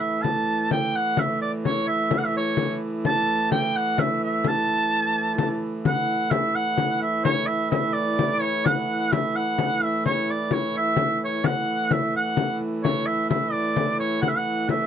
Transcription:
Already playing: hurdy-gurdy A2 E3
0.00 shawm E5, frame drum
0.23 hurdy-gurdy A2 E3, shawm A5, frame drum
0.47 frame drum
0.71 shawm G5, frame drum
0.94 shawm F#5, frame drum
1.17 shawm E5, frame drum
1.42 shawm D5
1.65 shawm C#5, frame drum
1.88 shawm E5, frame drum
2.11 shawm E5, frame drum
2.18 shawm F#5
2.25 shawm E5
2.35 shawm C#5, frame drum
2.57 frame drum
3.05 shawm A5, frame drum
3.52 shawm G5, frame drum
3.76 shawm F#5, frame drum
3.98 shawm E5, frame drum
4.24 shawm E5
4.44 shawm A5, frame drum
4.69 frame drum
5.38 frame drum
5.62 frame drum
5.85 hurdy-gurdy A2 E3, shawm F#5, frame drum
6.31 shawm E5, frame drum
6.56 shawm F#5, frame drum
6.78 frame drum
7.02 shawm E5, frame drum
7.24 shawm C#5, frame drum
7.47 shawm E5
7.70 shawm E5, frame drum
7.93 shawm D5, frame drum
8.19 frame drum
8.41 shawm C#5, frame drum
8.66 shawm F#5, frame drum
9.12 shawm E5, frame drum
9.35 shawm F#5, frame drum
9.58 frame drum
9.83 shawm E5, frame drum
10.06 shawm C#5, frame drum
10.30 shawm D5, frame drum
10.51 shawm C#5, frame drum
10.75 shawm E5, frame drum
10.97 frame drum
11.25 shawm C#5
11.44 hurdy-gurdy A2 E3, shawm F#5, frame drum
11.91 shawm E5, frame drum
12.15 shawm F#5, frame drum
12.37 frame drum
12.61 frame drum
12.84 shawm C#5, frame drum
13.07 shawm E5
13.30 shawm E5, frame drum
13.52 shawm D5, frame drum
13.76 frame drum
14.00 shawm C#5, frame drum
14.22 shawm F#5, frame drum
14.29 shawm E5
14.37 shawm F#5
14.69 shawm E5, frame drum

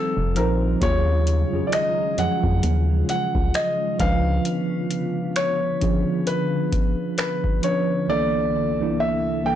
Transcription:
Already playing: ambient pad D#3 G3 C4 F4, tine electric piano F3 C4 D#4 C5, grand piano A4
0.17 fm bass F1
0.35 fm bass A#1, tine electric piano F3 C4 D#4 C5, grand piano A#4, closed hi-hat
0.81 fm bass D#2, ambient pad C#3 D#3 G#3, tine electric piano F#3 C#4 F4 G#4, grand piano C#5, kick, closed hi-hat
1.27 closed hi-hat
1.53 fm bass F2, tine electric piano F#3 C#4 F4 G#4
1.67 grand piano D5
1.72 grand piano D#5, finger snap, closed hi-hat
2.17 fm bass F2, tine electric piano F3 F#3 C#4 G#4, grand piano F#5, closed hi-hat
2.44 fm bass F2, kick
2.63 fm bass D#2, closed hi-hat
3.09 grand piano F#5, closed hi-hat
3.35 fm bass C#2, kick
3.54 grand piano D#5, finger snap, closed hi-hat
3.99 fm bass C#2, ambient pad C#3 D3 B3, tine electric piano F3 C#4 D4 B4, grand piano F5, kick, closed hi-hat
4.45 closed hi-hat
4.91 closed hi-hat
5.36 grand piano C#5, finger snap, closed hi-hat
5.81 tine electric piano F3 C#4 D4 G#4, kick, closed hi-hat
6.27 grand piano B4, closed hi-hat
6.72 kick, closed hi-hat
7.18 grand piano B4, finger snap, closed hi-hat
7.44 kick
7.62 tine electric piano F3 C#4 D4 B4, grand piano C#5, closed hi-hat
8.08 tine electric piano C2 E3 A#3 D4 A4, ambient pad C2 A#3 E4 A4, grand piano D5
8.80 tine electric piano C2 E3 A#3 D4 E4
9.00 grand piano E5
9.44 tine electric piano C2 E3 A#3 D4 A4, grand piano G5

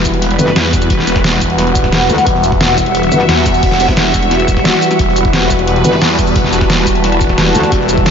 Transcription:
Already playing: detuned saw bass E1, analog synth pad E3 G3 F#4 B4, ambient pad F#5
0.05 kick, closed hi-hat, shaker
0.14 closed hi-hat
0.22 closed hi-hat
0.31 closed hi-hat
0.39 wobble bass G1, closed hi-hat, shaker
0.48 snare
0.56 detuned saw bass E2, snare, closed hi-hat
0.65 snare
0.72 kick, snare, closed hi-hat, shaker
0.82 closed hi-hat, shaker
0.90 detuned saw bass E1, kick, closed hi-hat
0.99 snare
1.07 closed hi-hat, shaker
1.16 kick, snare
1.24 snare, closed hi-hat
1.33 closed hi-hat
1.41 detuned saw bass E1, kick, closed hi-hat, shaker
1.50 closed hi-hat
1.58 snare, closed hi-hat
1.67 closed hi-hat
1.75 kick, closed hi-hat, shaker
1.84 kick, snare
1.92 detuned saw bass E1, snare, closed hi-hat
2.09 wobble bass D2, closed hi-hat, shaker
2.18 snare, closed hi-hat, shaker
2.26 detuned saw bass E1, analog synth pad E5, kick, closed hi-hat
2.35 snare
2.44 closed hi-hat, shaker
2.52 kick, closed hi-hat
2.60 snare, closed hi-hat
2.70 closed hi-hat
2.78 kick, closed hi-hat, shaker
2.86 closed hi-hat
2.95 closed hi-hat
3.03 closed hi-hat
3.12 wobble bass G1, closed hi-hat, shaker
3.20 snare
3.29 detuned saw bass E2, snare, closed hi-hat
3.37 snare
3.46 kick, snare, closed hi-hat, shaker
3.54 closed hi-hat, shaker
3.63 detuned saw bass E1, kick, closed hi-hat
3.71 snare
3.80 snare, closed hi-hat, shaker
3.84 snare, closed hi-hat
3.88 kick, snare, closed hi-hat
3.96 snare, closed hi-hat
4.14 detuned saw bass E1, kick, closed hi-hat, shaker
4.23 closed hi-hat
4.31 snare, closed hi-hat
4.40 closed hi-hat
4.48 kick, closed hi-hat, shaker
4.57 kick, snare
4.64 snare, closed hi-hat
4.82 closed hi-hat, shaker
4.91 snare, closed hi-hat, shaker
4.99 detuned saw bass E1, analog synth pad B4, kick, closed hi-hat
5.08 snare
5.16 closed hi-hat, shaker
5.25 kick, closed hi-hat
5.30 ambient pad A5, snare, closed hi-hat
5.41 closed hi-hat
5.50 kick, closed hi-hat, shaker
5.59 closed hi-hat
5.67 closed hi-hat
5.76 closed hi-hat
5.84 wobble bass G1, closed hi-hat, shaker
5.93 snare
6.01 detuned saw bass E2, snare, closed hi-hat
6.11 snare
6.19 kick, snare, closed hi-hat, shaker
6.27 closed hi-hat, shaker
6.36 detuned saw bass E1, kick, closed hi-hat
6.44 snare
6.53 closed hi-hat, shaker
6.61 kick, snare
6.70 snare, closed hi-hat
6.87 detuned saw bass E1, kick, closed hi-hat, shaker
6.95 closed hi-hat
7.04 snare, closed hi-hat
7.12 closed hi-hat
7.21 kick, closed hi-hat, shaker
7.29 kick, snare
7.38 detuned saw bass E1, snare, closed hi-hat
7.55 wobble bass D2, closed hi-hat, shaker
7.63 snare, closed hi-hat, shaker
7.72 detuned saw bass E1, analog synth pad E5, kick, closed hi-hat
7.81 snare
7.88 closed hi-hat, shaker
7.97 kick, closed hi-hat
8.05 snare, closed hi-hat

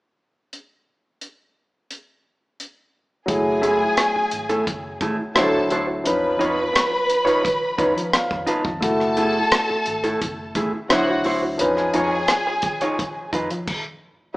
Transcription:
0.53 closed hi-hat
1.21 closed hi-hat
1.91 closed hi-hat
2.60 closed hi-hat
3.26 fingered electric bass F#1, grand piano F#3 A3 E4 G#4, string section G#4 G#5, kick, closed hi-hat
3.62 clean electric guitar A3 E4 G#4, closed hi-hat
3.97 muted clean electric guitar stroke, cross-stick, closed hi-hat
4.15 muted clean electric guitar stroke, muted fingered electric bass stroke
4.31 fingered electric bass G#1, closed hi-hat
4.49 clean electric guitar A3 E4 A4, closed hi-hat
4.67 fingered electric bass F#1, muted clean electric guitar stroke, kick, closed hi-hat
5.01 fingered electric bass A1, clean electric guitar A3 E4 G#4, kick, closed hi-hat
5.18 muted clean electric guitar stroke
5.35 fingered electric bass D2, grand piano F#3 D4 E4 C5, clean electric guitar E4 F#4 C5, string section A4 A5, cross-stick, closed hi-hat
5.54 muted clean electric guitar stroke
5.70 fingered electric bass D2, clean electric guitar E4 F#4 C5, closed hi-hat
5.88 muted clean electric guitar stroke
6.04 fingered electric bass F2, grand piano F3 C#4 D#4 B4, string section B4 B5, closed hi-hat
6.39 fingered electric bass F2, clean electric guitar D#4 F4 C#5, closed hi-hat
6.73 muted clean electric guitar stroke, cross-stick, closed hi-hat
6.90 muted clean electric guitar stroke
7.10 closed hi-hat
7.25 clean electric guitar D#4 F4 C#5, closed hi-hat
7.43 muted clean electric guitar stroke, kick, closed hi-hat
7.78 fingered electric bass F2, grand piano F3 C#4 D#4 B4 C#5, clean electric guitar D#4 F4 B4, kick, closed hi-hat
7.95 fingered electric bass F3, muted clean electric guitar stroke, closed hi-hat
8.13 grand piano F5, muted clean electric guitar stroke, muted fingered electric bass stroke, cross-stick, closed hi-hat
8.31 fingered electric bass F2, muted clean electric guitar stroke, kick
8.47 clean electric guitar D#4 F4 B4, grand piano A5, closed hi-hat
8.65 fingered electric bass F2, muted clean electric guitar stroke, kick
8.81 fingered electric bass F#1, grand piano A3 E4 F#4 A4, string section A4 A5, kick, closed hi-hat
9.00 cross-stick
9.17 clean electric guitar A3 E4 G#4, closed hi-hat
9.52 muted clean electric guitar stroke, cross-stick, closed hi-hat
9.69 muted clean electric guitar stroke, muted fingered electric bass stroke
9.86 fingered electric bass G#1, closed hi-hat
10.04 clean electric guitar A3 E4 A4, closed hi-hat
10.21 fingered electric bass F#1, muted clean electric guitar stroke, kick, closed hi-hat
10.55 fingered electric bass A1, clean electric guitar A3 E4 G#4, kick, closed hi-hat
10.74 muted clean electric guitar stroke
10.89 fingered electric bass D2, grand piano F#3 D4 E4 C5, clean electric guitar E4 F#4 C5, string section F#4 F#5, cross-stick, closed hi-hat
11.09 muted clean electric guitar stroke
11.24 fingered electric bass D2, clean electric guitar E4 F#4 C5, open hi-hat
11.43 muted clean electric guitar stroke
11.58 fingered electric bass F2, grand piano F3 C#4 D#4 B4, string section G#4, closed hi-hat
11.62 string section G#5
11.77 cross-stick
11.94 fingered electric bass F2, clean electric guitar D#4 F4 C#5, closed hi-hat
12.28 muted clean electric guitar stroke, cross-stick, closed hi-hat
12.47 muted clean electric guitar stroke
12.62 kick, closed hi-hat
12.81 clean electric guitar D#4 F4 C#5, closed hi-hat
12.99 muted clean electric guitar stroke, kick, closed hi-hat
13.33 fingered electric bass F2, clean electric guitar D#4 F4 B4, kick, closed hi-hat
13.50 fingered electric bass F3, muted clean electric guitar stroke, closed hi-hat
13.68 kick, crash

